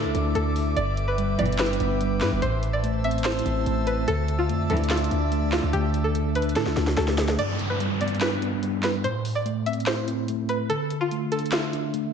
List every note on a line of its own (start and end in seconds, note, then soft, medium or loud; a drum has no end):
0.00 0.14 D3 medium
0.00 0.35 A3 loud
0.00 0.15 D4 medium
0.00 0.77 E4 loud
0.00 0.33 A4 medium
0.00 0.73 A4 medium
0.00 0.73 D5 medium
0.00 0.78 E5 loud
0.00 4.04 E5 medium
0.00 2.38 D6 loud
0.04 0.14 D2 loud
0.15 0.34 D2 loud
0.15 0.77 D4 medium
0.15 closed hi-hat medium
0.35 0.75 D2 loud
0.35 0.77 A3 medium
0.35 0.53 A4 medium
0.35 closed hi-hat medium
0.56 open hi-hat medium
0.76 1.36 G1 loud
0.76 1.80 G2 loud
0.76 2.40 B4 medium
0.76 1.06 D5 loud
0.76 2.40 G5 medium
0.76 closed hi-hat medium
0.97 closed hi-hat medium
1.08 1.37 B4 medium
1.18 2.00 G3 medium
1.18 closed hi-hat medium
1.39 1.78 G1 loud
1.39 1.56 B1 loud
1.39 1.56 G2 medium
1.39 1.56 E3 loud
1.39 1.79 B3 medium
1.39 1.57 D5 medium
1.39 closed hi-hat soft
1.46 closed hi-hat medium
1.52 closed hi-hat medium
1.58 2.42 D4 medium
1.58 2.18 B4 loud
1.58 snare loud
1.58 clap loud
1.58 closed hi-hat medium
1.66 closed hi-hat medium
1.73 closed hi-hat medium
1.80 2.23 G1 loud
1.80 2.42 B3 medium
1.80 closed hi-hat medium
2.01 2.42 G3 medium
2.01 closed hi-hat medium
2.21 2.31 G2 loud
2.21 2.40 B4 medium
2.21 snare medium
2.21 clap medium
2.21 open hi-hat medium
2.32 2.42 G1 loud
2.42 3.42 A1 loud
2.42 3.46 A2 medium
2.42 2.71 C5 medium
2.42 4.06 C5 medium
2.42 7.35 A5 medium
2.42 7.35 E6 loud
2.42 closed hi-hat medium
2.63 closed hi-hat medium
2.73 3.02 D5 medium
2.83 3.66 A3 medium
2.83 closed hi-hat medium
3.04 3.44 C4 medium
3.04 3.22 E5 medium
3.04 closed hi-hat soft
3.11 closed hi-hat medium
3.18 closed hi-hat medium
3.24 4.08 E4 loud
3.24 3.83 C5 medium
3.24 snare loud
3.24 clap loud
3.24 closed hi-hat medium
3.32 closed hi-hat medium
3.39 closed hi-hat medium
3.45 3.65 A1 loud
3.45 4.07 C4 medium
3.45 closed hi-hat medium
3.66 4.06 A1 loud
3.66 4.08 A3 medium
3.66 closed hi-hat medium
3.87 4.05 B4 medium
3.87 closed hi-hat medium
4.08 4.51 D2 loud
4.08 5.11 D3 medium
4.08 4.37 A4 loud
4.08 7.35 D5 medium
4.08 7.35 E5 medium
4.08 closed hi-hat medium
4.28 closed hi-hat medium
4.39 4.68 F4 medium
4.49 4.69 F2 loud
4.49 5.30 A3 medium
4.49 closed hi-hat medium
4.70 4.87 A1 loud
4.70 5.10 D2 loud
4.70 4.87 F2 medium
4.70 4.87 E3 loud
4.70 5.10 D4 medium
4.70 4.88 A4 medium
4.70 closed hi-hat soft
4.77 closed hi-hat medium
4.84 closed hi-hat medium
4.90 5.49 F4 medium
4.90 5.94 E5 loud
4.90 snare loud
4.90 clap loud
4.90 closed hi-hat medium
4.97 closed hi-hat medium
5.04 closed hi-hat medium
5.11 5.61 D2 loud
5.11 6.14 D4 medium
5.11 closed hi-hat medium
5.32 6.14 A3 loud
5.32 closed hi-hat medium
5.52 5.71 F4 medium
5.52 snare medium
5.52 clap medium
5.52 open hi-hat medium
5.63 5.73 D2 loud
5.73 6.58 D2 loud
5.73 6.77 D3 medium
5.73 6.02 G4 loud
5.73 closed hi-hat medium
5.94 closed hi-hat medium
6.04 6.33 A4 medium
6.15 6.96 A3 medium
6.15 closed hi-hat medium
6.35 6.76 D4 medium
6.35 6.54 B4 medium
6.35 closed hi-hat medium
6.35 open hi-hat medium
6.42 closed hi-hat medium
6.49 closed hi-hat soft
6.56 6.68 A2 loud
6.56 7.39 E4 loud
6.56 6.95 A4 medium
6.56 snare medium
6.56 closed hi-hat medium
6.66 6.76 D2 loud
6.66 snare medium
6.77 6.97 D2 loud
6.77 7.39 D4 medium
6.77 snare medium
6.77 closed hi-hat medium
6.87 snare medium
6.97 7.37 D2 loud
6.97 7.39 A3 medium
6.97 7.15 A4 medium
6.97 snare loud
6.97 closed hi-hat medium
7.08 snare medium
7.18 snare loud
7.18 open hi-hat medium
7.28 snare loud
7.39 8.42 G2 medium
7.39 7.68 D5 loud
7.39 closed hi-hat medium
7.39 downlifter medium
7.59 closed hi-hat medium
7.70 7.99 B4 medium
7.80 8.62 G3 medium
7.80 closed hi-hat medium
8.01 8.41 B3 medium
8.01 8.19 D5 medium
8.01 closed hi-hat medium
8.08 closed hi-hat medium
8.15 closed hi-hat soft
8.21 9.04 D4 medium
8.21 8.80 B4 loud
8.21 snare loud
8.21 clap loud
8.21 closed hi-hat medium
8.42 9.04 B3 medium
8.42 closed hi-hat medium
8.63 9.04 G3 medium
8.63 closed hi-hat medium
8.83 9.02 B4 medium
8.83 snare medium
8.83 clap medium
8.83 closed hi-hat medium
9.04 10.08 A2 loud
9.04 9.33 C5 medium
9.04 closed hi-hat medium
9.25 open hi-hat medium
9.35 9.65 D5 medium
9.46 10.28 A3 medium
9.46 closed hi-hat medium
9.66 10.06 C4 medium
9.66 9.84 E5 medium
9.66 closed hi-hat medium
9.73 closed hi-hat medium
9.80 closed hi-hat soft
9.86 10.70 E4 loud
9.86 10.45 C5 medium
9.86 snare loud
9.86 clap loud
9.86 closed hi-hat medium
10.07 10.70 C4 medium
10.07 closed hi-hat medium
10.28 10.70 A3 medium
10.28 closed hi-hat medium
10.49 10.67 B4 medium
10.49 closed hi-hat medium
10.70 11.73 D3 medium
10.70 10.99 A4 loud
10.70 closed hi-hat medium
10.90 closed hi-hat medium
11.01 11.30 F4 medium
11.11 11.92 A3 medium
11.11 closed hi-hat medium
11.32 11.72 D4 medium
11.32 11.50 A4 medium
11.32 closed hi-hat medium
11.39 closed hi-hat medium
11.46 closed hi-hat soft
11.52 12.11 F4 medium
11.52 12.13 E5 loud
11.52 snare loud
11.52 clap loud
11.52 closed hi-hat medium
11.73 12.13 D4 medium
11.73 closed hi-hat medium
11.94 12.13 A3 medium
11.94 closed hi-hat medium